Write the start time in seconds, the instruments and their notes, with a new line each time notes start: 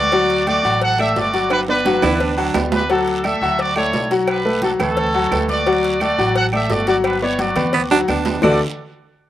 Already playing: upright bass D2, trumpet section F#4 D5
0.12 upright piano F#3 F#4 F#5, cowbell, high conga, low agogo, long guiro
0.30 cowbell
0.47 upright piano A3 A4 D5, trumpet section F#4 D5, cowbell, high conga, low agogo, short guiro, claves
0.63 upright bass A1, upright piano F#3 F#4 F#5, high conga, low agogo, short guiro
0.81 trumpet section A4 F#5, cowbell, high conga, long guiro
0.99 upright piano A3 A4 D5, trumpet section G4 E5, high conga, low agogo, claves
1.16 upright bass G1, upright piano A3 A4 D5, trumpet section F#4 D5, cowbell, high conga, low timbale, short guiro
1.34 upright piano F#3 F#4 F#5, cowbell, high conga, short guiro
1.50 trumpet section D4 B4, cowbell, high conga, high timbale, low agogo, long guiro, claves
1.68 upright piano B3 B4 D5, trumpet section D4 B4, high conga, high timbale
1.85 upright piano F#3 F#4 F#5, cowbell, high conga, high timbale, low agogo, short guiro
2.02 upright bass D2, upright piano B3 B4 D5, baritone saxophone E4, cowbell, high conga, low conga, high timbale, low agogo, short guiro, claves
2.20 baritone saxophone D4, cowbell, high conga, long guiro
2.37 upright piano F#3 F#4 F#5, baritone saxophone D4, high conga, low agogo
2.54 upright bass D2, upright piano B3 B4 D5, cowbell, high conga, low timbale, low agogo, short guiro, claves
2.72 trumpet section D4 B4, cowbell, high conga, low timbale, low agogo, short guiro
2.90 upright piano F#3 F#4 F#5, trumpet section D4 A4, cowbell, high conga, low agogo, long guiro
3.07 cowbell, high conga
3.24 upright piano A3 A4 D5, trumpet section A4 E5, cowbell, high conga, low agogo, short guiro, claves
3.41 upright bass D2, upright piano F#3 F#4 F#5, high conga, low agogo, short guiro
3.59 trumpet section F#4 D5, cowbell, high conga, long guiro
3.76 upright piano A3 A4 D5, trumpet section E4 C#5, low agogo, claves
3.92 upright bass B1, upright piano A3 A4 D5, cowbell, high conga, low timbale, short guiro
4.10 upright piano F#3 F#4 F#5, cowbell, high conga, short guiro
4.27 trumpet section D4 B4, cowbell, high conga, low agogo, long guiro, claves
4.45 upright piano A3 A4 B4, high conga
4.62 upright piano F#3 F#4 F#5, trumpet section D4 A4, cowbell, high conga, low agogo, short guiro
4.79 upright bass D2, upright piano A3 A4 B4, trumpet section C#4 A4, cowbell, high conga, low conga, low agogo, short guiro, claves
4.97 cowbell, high conga, low conga, long guiro
5.14 upright piano F#3 F#4 F#5, high conga, low agogo
5.32 upright bass D2, upright piano A3 A4 B4, cowbell, high conga, low timbale, low agogo, short guiro, claves
5.49 trumpet section F#4 D5, cowbell, high conga, low agogo, short guiro
5.66 upright piano F#3 F#4 F#5, cowbell, high conga, low agogo, long guiro
5.83 cowbell, high conga
6.00 upright piano A3 A4 D5, trumpet section F#4 D5, cowbell, high conga, low agogo, short guiro, claves
6.18 upright bass A1, upright piano F#3 F#4 F#5, high conga, low agogo, short guiro
6.35 trumpet section A4 F#5, cowbell, high conga, long guiro
6.53 upright piano A3 A4 D5, trumpet section G4 E5, high conga, low agogo, claves
6.70 upright bass G1, upright piano A3 A4 D5, trumpet section F#4 D5, cowbell, low timbale, short guiro
6.87 upright piano F#3 F#4 F#5, trumpet section F#4 D5, cowbell, high conga, short guiro
7.04 trumpet section D4 B4, cowbell, high conga, low agogo, long guiro, claves
7.21 upright piano B3 B4 D5, trumpet section E4 C#5, high conga
7.39 upright piano F#3 F#4 F#5, trumpet section F#4 D5, cowbell, high conga, low agogo, short guiro
7.56 upright bass D2, upright piano B3 B4 D5, cowbell, high conga, low conga, low agogo, short guiro, claves
7.73 baritone saxophone B3, cowbell, high conga, low conga, long guiro
7.91 upright piano F#3 F#4 F#5, baritone saxophone D4, high conga, high timbale, low agogo
8.08 upright bass D2, upright piano B3 B4 D5, baritone saxophone D4, cowbell, high conga, low agogo, short guiro, claves
8.25 cowbell, high conga, low timbale, low agogo, short guiro
8.42 upright bass D2, upright piano D3 A3 D4 F#4 A4 D5, baritone saxophone F#4, trumpet section D5, low bongo, low conga, low timbale, long guiro, claves